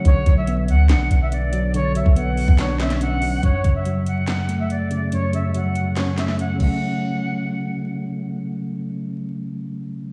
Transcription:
<<
  \new Staff \with { instrumentName = "Flute" } { \time 4/4 \key fis \minor \tempo 4 = 142 cis''8. e''8. fis''8 fis''8. e''16 d''4 | cis''8 e''8 fis''4 cis''8 e''8 fis''4 | cis''8. e''8. fis''8 fis''8. e''16 d''4 | cis''8 e''8 fis''4 cis''8 e''8 fis''8 fis''8~ |
fis''2. r4 | r1 | }
  \new Staff \with { instrumentName = "Tine electric piano" } { \clef bass \time 4/4 \key fis \minor d8 fis8 b4 d'4. fis8 | d8 fis8 b4 d'8 cis'4 fis8 | fis,8 cis8 fis4. a4 cis8 | fis,8 cis8 fis4 cis'8 a4 <cis fis a cis'>8~ |
<cis fis a cis'>1~ | <cis fis a cis'>1 | }
  \new Staff \with { instrumentName = "808-style bass" } { \clef bass \time 4/4 \key fis \minor b,,8 b,,4 d,8 b,,8 b,,4.~ | b,,8. b,,4 b,,2~ b,,16 | r1 | r1 |
r1 | r1 | }
  \new DrumStaff \with { instrumentName = "Drums" } \drummode { \time 4/4 <hh bd>8 <hh bd>8 hh8 hh8 <hc hh sn>8 hh8 hh8 hh8 | hh8 hh16 bd16 hh8 hho16 bd16 <hc hh sn>8 <hc hh sn>16 <hh sn>16 hh8 hho8 | <hh bd>8 <hh bd>8 hh8 hh8 <hc hh sn>8 hh8 hh8 hh8 | hh8 hh8 hh8 hh8 <hc hh sn>8 <hc hh sn>16 sn16 hh8 <cymc bd>8 |
r4 r4 r4 r4 | r4 r4 r4 r4 | }
>>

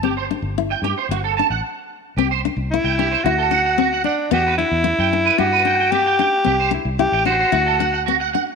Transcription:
<<
  \new Staff \with { instrumentName = "Clean electric guitar" } { \time 4/4 \key c \lydian \tempo 4 = 112 g'16 c''16 r8. g''16 g'16 c''16 fis'16 a'16 a''16 fis''16 r4 | g'16 c''16 r8. g''16 g'16 c''16 fis'16 a'16 fis''16 fis''16 fis'16 fis''16 fis''16 r16 | g'16 b'16 r8. g''16 r16 b'16 g'16 b'16 g''16 g''16 g'16 g''16 g''16 r16 | g'16 c''16 r8. g''16 c''16 c''16 fis'16 a'16 fis''16 fis''16 fis'16 fis''16 fis''16 r16 | }
  \new Staff \with { instrumentName = "Alto saxophone" } { \time 4/4 \key c \lydian r1 | r4 e'4 fis'4. d'8 | fis'8 e'4. fis'4 g'4~ | g'8 e'8 g'8 fis'4. r4 | }
  \new Staff \with { instrumentName = "Nylon-string guitar" } { \time 4/4 \key c \lydian c'8 d'8 e'8 d'8 r8 d'8 r4 | c'8 d'8 e'8 d'8 e'8 d'8 c'8 d'8 | b8 d'8 e'8 d'8 e'8 d'8 c'8 d'8 | c'8 d'8 e'8 d'8 e'8 d'8 c'8 d'8 | }
  \new Staff \with { instrumentName = "Fingered electric bass" } { \clef bass \time 4/4 \key c \lydian g,,8. g,,8. g,16 r16 g,,8. a,,16 r4 | c,8. c,8 c,8. d,2 | e,8. e,8 fis,8. g,2 | c,8. c,8 a,,8. d,2 | }
>>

